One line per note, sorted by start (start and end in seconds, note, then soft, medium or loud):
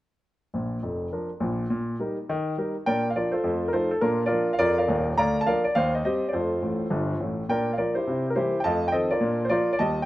0.54 0.77 A#1 medium
0.54 0.78 A#2 medium
0.83 1.06 F1 medium
0.83 1.06 F2 medium
1.13 1.29 F3 soft
1.13 1.29 D4 soft
1.13 1.29 A#4 soft
1.40 1.64 A#1 medium
1.40 1.64 A#2 medium
1.70 1.95 A#2 medium
2.00 2.16 G3 medium
2.00 2.16 D#4 soft
2.00 2.16 A#4 medium
2.29 2.54 D#3 medium
2.58 2.74 G3 soft
2.58 2.74 D#4 soft
2.58 2.74 A#4 medium
2.86 3.11 A#2 medium
2.86 3.04 D4 soft
2.86 3.09 A#4 medium
2.86 3.09 D5 medium
2.86 3.06 G5 medium
3.10 3.16 F5 medium
3.16 3.32 F3 soft
3.16 3.32 D4 soft
3.16 3.32 F4 medium
3.16 3.33 A#4 medium
3.16 3.31 D5 medium
3.32 3.65 F4 medium
3.32 3.65 A4 medium
3.32 3.62 C5 medium
3.44 3.69 F2 medium
3.44 3.61 A3 soft
3.68 3.74 A#4 medium
3.73 3.89 F3 soft
3.73 3.89 A3 soft
3.73 3.89 D#4 soft
3.73 3.91 F4 medium
3.73 3.90 A4 medium
3.73 3.89 C5 medium
3.91 4.01 A4 medium
4.01 4.27 A#2 medium
4.01 4.25 D4 medium
4.01 4.25 F4 medium
4.01 4.22 A#4 medium
4.26 4.54 F4 medium
4.26 4.54 A#4 medium
4.26 4.51 D5 medium
4.32 4.48 F3 soft
4.32 4.48 A#3 soft
4.32 4.48 D4 soft
4.53 4.59 F5 medium
4.59 4.84 F2 medium
4.59 4.77 F4 medium
4.59 4.77 A#4 medium
4.59 4.75 D5 loud
4.78 5.05 A#4 medium
4.78 5.06 D5 medium
4.78 5.03 F5 medium
4.88 5.12 D#1 medium
4.88 5.12 D#2 medium
5.18 5.42 D2 medium
5.18 5.40 D5 medium
5.18 5.40 F5 medium
5.18 5.38 A#5 loud
5.41 5.47 A5 medium
5.46 5.63 F3 soft
5.46 5.63 A#3 soft
5.46 5.64 D4 soft
5.46 5.64 A#4 medium
5.46 5.63 D5 medium
5.46 5.62 F5 medium
5.64 5.74 D5 medium
5.75 6.01 D#2 medium
5.75 5.93 C5 medium
5.75 5.91 F5 loud
5.95 6.03 D#5 medium
6.05 6.21 G3 soft
6.05 6.21 C4 soft
6.05 6.27 G4 medium
6.05 6.27 C5 medium
6.05 6.25 D#5 medium
6.28 6.34 D5 medium
6.33 6.58 F2 medium
6.33 6.51 A3 soft
6.33 7.35 F4 medium
6.33 7.35 A4 medium
6.33 7.23 C5 medium
6.62 6.84 A1 medium
6.62 6.84 A2 medium
6.90 7.13 G1 medium
6.90 7.13 G2 medium
7.20 7.42 A1 medium
7.20 7.42 A2 medium
7.49 7.74 A#2 medium
7.49 7.67 D4 soft
7.49 7.72 A#4 medium
7.49 7.72 D5 medium
7.49 7.70 G5 medium
7.73 7.79 F5 medium
7.78 7.94 F3 soft
7.78 7.94 A#3 soft
7.78 7.95 F4 medium
7.78 7.95 A#4 medium
7.78 7.93 D5 medium
7.95 8.08 E4 medium
7.95 8.28 G4 medium
7.95 8.25 C5 medium
8.07 8.32 C3 medium
8.07 8.25 E4 medium
8.30 8.36 A#4 medium
8.35 8.51 E3 soft
8.35 8.52 G3 soft
8.35 8.52 A#3 soft
8.35 8.58 E4 medium
8.35 8.58 G4 medium
8.35 8.56 C5 medium
8.60 8.65 G5 medium
8.60 8.85 A5 medium
8.64 8.89 F2 medium
8.64 8.82 A3 soft
8.64 8.87 D#5 medium
8.64 8.87 F5 medium
8.88 8.94 G5 medium
8.92 9.09 D#3 soft
8.92 9.10 F3 soft
8.92 9.10 C4 soft
8.92 9.10 A4 medium
8.92 9.10 C5 medium
8.92 9.08 D#5 medium
9.11 9.44 F4 medium
9.11 9.44 A#4 medium
9.11 9.40 D5 medium
9.21 9.46 A#2 medium
9.21 9.39 D4 medium
9.45 9.51 C5 medium
9.49 9.66 F3 soft
9.49 9.66 A#3 soft
9.49 9.73 F4 medium
9.49 9.73 A#4 medium
9.49 9.70 D5 medium
9.73 9.80 D5 medium
9.79 10.05 D#2 medium
9.79 9.97 G3 medium
9.79 10.02 D#5 medium
9.79 10.00 A5 medium
10.02 10.06 G5 medium